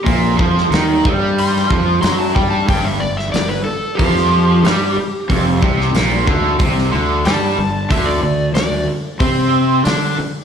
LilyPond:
<<
  \new Staff \with { instrumentName = "Electric slide guitar" } { \time 4/4 \key c \major \tempo 4 = 92 r2 c'''8 r8 c'''16 a''16 g''16 a''16 | g''16 e''16 d''16 e''16 d''16 b'16 a'8 g'2~ | g'4 r2 a''4 | e''16 d''8. d''8 r2 r8 | }
  \new Staff \with { instrumentName = "Overdriven electric guitar" } { \clef bass \time 4/4 \key c \major bes,8 f8 ees8 g4 f8 fis8 g8 | g,8 g,8 g,8 r8 f4 g8 r8 | f,8 c8 bes,8 d8 c8 d8 g8 g,8 | d8 d8 d8 r8 c'4 d'8 r8 | }
  \new Staff \with { instrumentName = "Fingered electric bass" } { \clef bass \time 4/4 \key c \major bes,,8 f,8 ees,8 g,4 f,8 fis,8 g,8 | g,,8 g,,8 g,,8 r8 f,4 g,8 r8 | f,,8 c,8 bes,,8 d,8 c,8 d,8 g,8 g,,8 | d,8 d,8 d,8 r8 c4 d8 r8 | }
  \new DrumStaff \with { instrumentName = "Drums" } \drummode { \time 4/4 <hho bd>8 bd16 sn16 <hho sn>8 bd8 hho16 sn16 bd8 <hho sn>8 bd8 | <hho bd>8. sn16 <hho sn>4 <hho bd>16 sn8. <hho sn>4 | <hho bd>8 bd16 sn16 <hho sn>8 bd8 <hho bd>16 sn8. <hho sn>4 | <hho bd>4 <hho sn>4 <hho bd>4 <hho sn>4 | }
>>